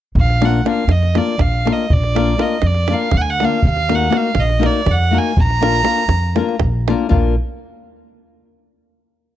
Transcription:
0.15 upright bass A#1, davul low
0.20 violin F5
0.30 davul high
0.41 nylon-string guitar A#3 D4 F4 A#4, davul high
0.45 violin F#5
0.65 nylon-string guitar A#3 D4 F4 A#4, violin F5, davul high
0.87 upright bass F2, violin D#5, davul high
1.03 davul high
1.15 nylon-string guitar A#3 D4 F4 A#4, violin D5, davul high
1.38 upright bass A#1, violin F5, davul high, davul low
1.65 nylon-string guitar A#3 D4 F4 A#4, davul high
1.72 violin D#5
1.90 upright bass A#1, violin D5, davul low
2.04 davul high
2.15 nylon-string guitar A#3 D4 F4 A#4, davul high
2.38 nylon-string guitar A#3 D4 F4 A#4, violin D#5, davul high
2.62 upright bass F2, davul high
2.67 violin D5
2.74 davul high
2.88 nylon-string guitar A#3 D4 F4 A#4, davul high
2.93 violin F5
3.11 upright bass D2, davul high, davul low
3.17 violin F#5
3.21 violin G#5
3.30 violin F#5
3.40 nylon-string guitar A#3 D4 F4 A#4, davul high
3.45 violin F5
3.62 upright bass D#2, davul low
3.69 violin F5
3.77 davul high
3.89 nylon-string guitar A#3 D#4 F#4 A#4, davul high
3.95 violin F#5
4.10 nylon-string guitar A#3 D#4 F#4 A#4, davul high
4.17 violin F5
4.35 upright bass A#1, davul high
4.40 violin D#5
4.49 davul high
4.59 nylon-string guitar A#3 D#4 F#4 A#4, davul high
4.66 violin D5
4.86 upright bass F2, davul high, davul low
4.92 violin F#5
5.11 nylon-string guitar A#3 D#4 F#4 A#4
5.19 violin G#5
5.37 upright bass A#1, davul low
5.42 violin A#5
5.50 davul high
5.61 nylon-string guitar A#3 D4 F4 A#4, davul high
5.83 nylon-string guitar A#3 D4 F4 A#4, davul high
5.98 davul high
6.08 upright bass F2, davul high
6.35 nylon-string guitar A#3 D4 F4 A#4, davul high
6.49 davul high
6.59 upright bass A#1, davul high, davul low
6.88 nylon-string guitar A#3 D4 F4 A#4, davul high
7.09 upright bass A#1, nylon-string guitar A#3 D4 F4 A#4, davul low

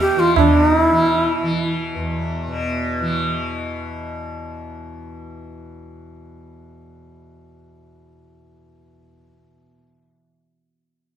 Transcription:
Already playing: tanpura E2 B2 E3
0.00 bansuri G4, tabla te
0.15 tanpura E3, tabla te
0.19 bansuri F4
0.36 tanpura B2, bansuri D4, tabla na, tabla ge
0.61 bansuri D#4
0.79 bansuri E4
0.91 tanpura E3
1.42 tanpura E3
1.95 tanpura E2
2.48 tanpura B2
3.01 tanpura E3

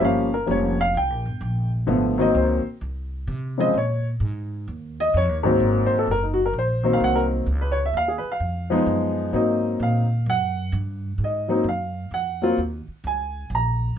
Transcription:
0.00 upright bass G1, grand piano F3 G3 A#3 C#4
0.05 grand piano F5
0.34 grand piano A#4
0.46 upright bass F1, grand piano F3 G3 A#3 C#4
0.51 grand piano C#5
0.81 grand piano F5
0.94 upright bass C2, grand piano G5
1.10 upright bass A#1
1.26 upright bass G1
1.41 upright bass A#1
1.87 upright bass G#1, grand piano D3 F3 A3 B3
2.18 grand piano D#3 F#3 A#3 C4 D#5
2.35 upright bass C#2, grand piano C5
2.65 muted upright bass stroke
2.81 upright bass C2
3.27 upright bass C3
3.58 grand piano C#3 F3 G#3 C4 D#5
3.74 upright bass A#2, grand piano C#5
4.20 upright bass G#2
4.68 upright bass D#2
5.00 grand piano D#5
5.14 upright bass F2, grand piano C#5
5.29 upright bass D#2
5.43 upright bass C#2, grand piano G#2 D#3 F#3 A#3 C4
5.60 upright bass G#1
5.86 grand piano C5
5.92 muted upright bass stroke
5.99 grand piano A4
6.07 upright bass F#1
6.11 grand piano A#4
6.23 grand piano D#4
6.34 grand piano F#4
6.46 grand piano A#4
6.53 upright bass A#1
6.59 grand piano C5
6.83 grand piano D#3 F#3 A#3 C4
6.93 grand piano F5
7.00 upright bass C2, grand piano F#5
7.15 grand piano A#4
7.46 upright bass C#2
7.61 grand piano B4
7.72 grand piano C#5
7.86 grand piano E5
7.93 upright bass D#2, grand piano F5
8.08 grand piano G#4
8.18 grand piano B4
8.24 muted upright bass stroke
8.32 grand piano F5
8.40 upright bass F2
8.70 grand piano F3 G#3 B3 D#4
8.86 upright bass F#2
9.33 upright bass G#2, grand piano F#3 A#3 C4 D#4 D#5
9.80 upright bass A#2, grand piano F5
10.26 upright bass F#2, grand piano F#5
10.72 upright bass G2
11.18 upright bass G#2
11.24 grand piano D#5
11.48 grand piano F#3 A#3 C4 D#4
11.64 upright bass F#2
11.69 grand piano F5
12.11 upright bass F2, grand piano F#5
12.42 grand piano F#3 A#3 C4 F4
12.58 upright bass D#2
12.88 muted upright bass stroke
13.04 upright bass C#2, grand piano G#5
13.50 upright bass A#1
13.55 grand piano A#5

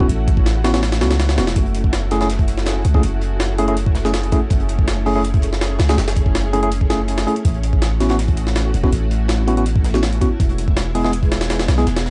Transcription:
Already playing: string machine A3 C#4 E4 F#4
0.00 tine electric piano B3 C#4 E4 F#4, kick
0.09 808-style bass A1, closed hi-hat
0.28 kick, closed hi-hat
0.37 kick
0.46 snare, closed hi-hat
0.64 tine electric piano B3 C#4 E4 F#4, snare, closed hi-hat
0.74 tine electric piano B3 C#4 E4 F#4, snare, closed hi-hat
0.83 snare, closed hi-hat
0.92 snare, closed hi-hat
1.01 808-style bass C#2, tine electric piano B3 C#4 E4 F#4, snare, closed hi-hat
1.11 snare, closed hi-hat
1.20 snare, closed hi-hat
1.29 snare, closed hi-hat
1.38 808-style bass E1, tine electric piano B3 C#4 E4 F#4, snare, closed hi-hat
1.47 snare, closed hi-hat
1.56 808-style bass F#1, string machine C#4 F#4, kick, closed hi-hat
1.66 closed hi-hat
1.75 closed hi-hat
1.84 kick
1.93 snare, closed hi-hat
2.11 tine electric piano A3 C#4 E4 G#4, snare, closed hi-hat
2.21 tine electric piano A3 C#4 E4 G#4, snare, closed hi-hat
2.30 snare, closed hi-hat
2.39 kick, closed hi-hat
2.48 closed hi-hat
2.58 snare
2.66 snare, closed hi-hat
2.85 808-style bass C#2, closed hi-hat
2.94 tine electric piano A3 C#4 E4 G#4, kick, snare
3.03 808-style bass F#1, closed hi-hat
3.21 closed hi-hat
3.40 snare, closed hi-hat
3.58 tine electric piano A3 C#4 E4 G#4, closed hi-hat
3.68 tine electric piano A3 C#4 E4 G#4, closed hi-hat
3.77 closed hi-hat
3.86 kick
3.95 snare, closed hi-hat
4.05 tine electric piano A3 C#4 E4 G#4, snare
4.13 snare, closed hi-hat
4.23 closed hi-hat
4.32 tine electric piano A3 C#4 E4 G#4, kick, closed hi-hat
4.50 808-style bass F#1, string machine G#4, kick, closed hi-hat
4.60 closed hi-hat
4.69 closed hi-hat
4.79 kick
4.87 snare, closed hi-hat
5.06 tine electric piano A3 C#4 E4 G#4, open hi-hat
5.16 tine electric piano A3 C#4 E4 G#4
5.24 closed hi-hat
5.34 kick, closed hi-hat
5.42 closed hi-hat
5.53 snare
5.61 snare, closed hi-hat
5.79 808-style bass C#2, snare, closed hi-hat
5.88 tine electric piano A3 C#4 E4 G#4, snare, closed hi-hat
5.98 808-style bass F#1, snare, closed hi-hat
6.08 snare, closed hi-hat
6.15 kick, closed hi-hat
6.26 kick
6.35 snare, closed hi-hat
6.53 tine electric piano A3 C#4 E4 G#4, closed hi-hat
6.63 tine electric piano A3 C#4 E4 G#4, closed hi-hat
6.71 closed hi-hat
6.81 kick
6.90 tine electric piano A3 C#4 E4 G#4, snare, closed hi-hat
7.08 closed hi-hat
7.18 snare, closed hi-hat
7.27 tine electric piano A3 C#4 E4 G#4, closed hi-hat
7.36 closed hi-hat
7.45 808-style bass A1, string machine A3 E4 F#4, kick, closed hi-hat
7.54 closed hi-hat
7.63 closed hi-hat
7.73 kick
7.82 snare, closed hi-hat
8.00 tine electric piano B3 C#4 E4 F#4, snare, closed hi-hat
8.09 tine electric piano B3 C#4 E4 F#4, snare, closed hi-hat
8.19 snare, closed hi-hat
8.28 kick, closed hi-hat
8.37 closed hi-hat
8.47 snare
8.55 snare, closed hi-hat
8.74 808-style bass E1, closed hi-hat
8.83 tine electric piano B3 C#4 E4 F#4, kick, snare
8.92 808-style bass A1, closed hi-hat
9.11 closed hi-hat
9.28 snare, closed hi-hat
9.48 tine electric piano B3 C#4 E4 F#4, closed hi-hat
9.57 tine electric piano B3 C#4 E4 F#4, closed hi-hat
9.66 closed hi-hat
9.76 kick
9.84 snare, closed hi-hat
9.94 tine electric piano B3 C#4 E4 F#4, snare
10.03 snare, closed hi-hat
10.13 closed hi-hat
10.21 tine electric piano B3 C#4 E4 F#4, kick, closed hi-hat
10.40 808-style bass E1, string machine G#3 B3 G#4, kick, closed hi-hat
10.49 closed hi-hat
10.58 closed hi-hat
10.68 kick
10.77 snare, closed hi-hat
10.95 tine electric piano G#3 B3 E4 G#4, closed hi-hat, open hi-hat
11.04 tine electric piano G#3 B3 E4 G#4, snare
11.13 closed hi-hat
11.23 kick, closed hi-hat
11.32 snare, closed hi-hat
11.41 snare, closed hi-hat
11.50 snare, closed hi-hat
11.60 snare, closed hi-hat
11.68 808-style bass B1, snare, closed hi-hat
11.78 tine electric piano G#3 B3 E4 G#4, snare, closed hi-hat
11.87 808-style bass E1, snare, closed hi-hat
11.96 snare, closed hi-hat
12.06 snare, closed hi-hat

